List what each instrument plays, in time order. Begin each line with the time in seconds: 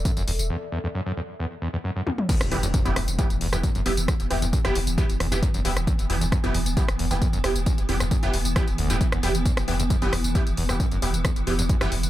Already playing: ambient pad A4 D5 E5
0.05 acid bass F#2, kick, closed hi-hat, tambourine
0.17 sub bass E1, acid bass F#2, closed hi-hat, tambourine
0.28 sub bass E1, acid bass E2, open hi-hat
0.39 sub bass E1, closed hi-hat, tambourine
0.50 acid bass E2
0.72 acid bass E2
0.84 acid bass E2
0.95 acid bass F#2
1.06 acid bass F#2
1.17 acid bass E2
1.40 acid bass E2
1.62 acid bass E2
1.73 acid bass E2
1.84 acid bass F#2
1.96 acid bass F#2
2.06 acid bass E2, high tom
2.18 mid tom
2.29 acid bass E2, synth drone E3 B3, kick, closed hi-hat, crash, tambourine, impact
2.41 sub bass E1, cross-stick, closed hi-hat, tambourine
2.51 sub bass E1, acid bass E2, synth stab B3 E4 G4, open hi-hat
2.63 sub bass E1, acid bass E2, closed hi-hat, tambourine
2.74 acid bass F#2, kick, closed hi-hat, tambourine
2.85 sub bass E1, acid bass F#2, synth stab B3 E4 G4, closed hi-hat, tambourine
2.96 sub bass E1, acid bass E2, cross-stick, open hi-hat
3.08 sub bass E1, closed hi-hat, tambourine
3.19 acid bass E2, synth stab B3 E4 G4, kick, closed hi-hat, tambourine
3.30 sub bass E1, closed hi-hat, tambourine
3.41 sub bass E1, acid bass E2, open hi-hat
3.53 sub bass E1, acid bass E2, synth stab B3 E4 G4, cross-stick, closed hi-hat, tambourine
3.63 acid bass F#2, kick, closed hi-hat, tambourine
3.75 sub bass E1, acid bass F#2, closed hi-hat, tambourine
3.86 sub bass E1, acid bass E2, synth stab B3 E4 G4, open hi-hat
3.97 sub bass E1, closed hi-hat, tambourine
4.08 acid bass E2, kick, cross-stick, closed hi-hat, tambourine
4.20 sub bass E1, closed hi-hat, tambourine
4.30 sub bass E1, acid bass E2, synth stab B3 E4 G4, open hi-hat
4.42 sub bass E1, acid bass E2, closed hi-hat, tambourine
4.53 acid bass F#2, kick, closed hi-hat, tambourine
4.65 sub bass E1, acid bass F#2, synth stab B3 E4 G4, cross-stick, closed hi-hat, tambourine
4.75 sub bass E1, acid bass E2, open hi-hat
4.87 sub bass E1, closed hi-hat, tambourine
4.98 acid bass E2, synth stab B3 E4 G4, kick, closed hi-hat, tambourine
5.09 sub bass E1, closed hi-hat, tambourine
5.20 sub bass E1, acid bass E2, cross-stick, open hi-hat
5.32 sub bass E1, acid bass E2, synth stab B3 E4 G4, closed hi-hat, tambourine
5.43 acid bass F#2, kick, closed hi-hat, tambourine
5.54 sub bass E1, acid bass F#2, closed hi-hat, tambourine
5.65 sub bass E1, acid bass E2, synth stab B3 E4 G4, open hi-hat
5.76 sub bass E1, cross-stick, closed hi-hat, tambourine
5.87 acid bass E2, kick, closed hi-hat, tambourine
5.99 sub bass E1, closed hi-hat, tambourine
6.10 sub bass E1, acid bass E2, synth stab B3 E4 G4, open hi-hat
6.21 sub bass E1, acid bass E2, closed hi-hat, tambourine
6.32 acid bass F#2, kick, cross-stick, closed hi-hat, tambourine
6.44 sub bass E1, acid bass F#2, synth stab B3 E4 G4, closed hi-hat, tambourine
6.54 sub bass E1, acid bass E2, open hi-hat
6.66 sub bass E1, closed hi-hat, tambourine
6.77 acid bass E2, synth stab B3 E4 G4, kick, closed hi-hat, tambourine
6.88 sub bass E1, cross-stick, closed hi-hat, tambourine
6.99 sub bass E1, acid bass E2, open hi-hat
7.11 sub bass E1, acid bass E2, synth stab B3 E4 G4, closed hi-hat, tambourine
7.22 acid bass F#2, kick, closed hi-hat, tambourine
7.33 sub bass E1, acid bass F#2, closed hi-hat, tambourine
7.44 sub bass E1, acid bass E2, synth stab B3 E4 G4, cross-stick, open hi-hat
7.55 sub bass E1, closed hi-hat, tambourine
7.66 acid bass E2, kick, closed hi-hat, tambourine
7.78 sub bass E1, closed hi-hat, tambourine
7.89 sub bass E1, acid bass E2, synth stab B3 E4 G4, open hi-hat
8.00 sub bass E1, acid bass E2, cross-stick, closed hi-hat, tambourine
8.11 acid bass F#2, kick, closed hi-hat, tambourine
8.23 sub bass E1, acid bass F#2, synth stab B3 E4 G4, closed hi-hat, tambourine
8.34 sub bass E1, acid bass E2, open hi-hat
8.45 sub bass E1, closed hi-hat, tambourine
8.56 acid bass E2, synth stab B3 E4 G4, kick, cross-stick, closed hi-hat, tambourine
8.68 sub bass E1, closed hi-hat, tambourine
8.78 sub bass E1, acid bass D2, open hi-hat
8.90 sub bass E1, acid bass B2, synth stab B3 E4 G4, closed hi-hat, tambourine
9.01 acid bass E3, kick, closed hi-hat, tambourine
9.12 sub bass E1, acid bass E2, cross-stick, closed hi-hat, tambourine
9.23 sub bass E1, acid bass E2, synth stab B3 E4 G4, open hi-hat
9.35 sub bass E1, closed hi-hat, tambourine
9.46 acid bass E2, kick, closed hi-hat, tambourine
9.57 sub bass E1, cross-stick, closed hi-hat, tambourine
9.68 sub bass E1, acid bass E2, synth stab B3 E4 G4, open hi-hat
9.80 sub bass E1, acid bass E2, closed hi-hat, tambourine
9.90 acid bass F#2, kick, closed hi-hat, tambourine
10.02 sub bass E1, acid bass F#2, synth stab B3 E4 G4, closed hi-hat, tambourine
10.13 sub bass E1, acid bass E2, cross-stick, open hi-hat
10.24 sub bass E1, closed hi-hat, tambourine
10.35 acid bass E2, synth stab B3 E4 G4, kick, closed hi-hat, tambourine
10.47 sub bass E1, closed hi-hat, tambourine
10.57 sub bass E1, acid bass E2, open hi-hat
10.69 sub bass E1, acid bass E2, synth stab B3 E4 G4, cross-stick, closed hi-hat, tambourine
10.80 acid bass F#2, kick, closed hi-hat, tambourine
10.91 sub bass E1, acid bass F#2, closed hi-hat, tambourine
11.02 sub bass E1, acid bass E2, synth stab B3 E4 G4, open hi-hat
11.14 sub bass E1, closed hi-hat, tambourine
11.25 acid bass E2, kick, cross-stick, closed hi-hat, tambourine
11.36 sub bass E1, closed hi-hat, tambourine
11.47 sub bass E1, acid bass E2, synth stab B3 E4 G4, open hi-hat
11.59 sub bass E1, acid bass E2, closed hi-hat, tambourine
11.69 acid bass F#2, kick, closed hi-hat, tambourine
11.81 sub bass E1, acid bass F#2, synth stab B3 E4 G4, cross-stick, closed hi-hat, tambourine
11.92 sub bass E1, acid bass E2, open hi-hat
12.03 sub bass E1, closed hi-hat, tambourine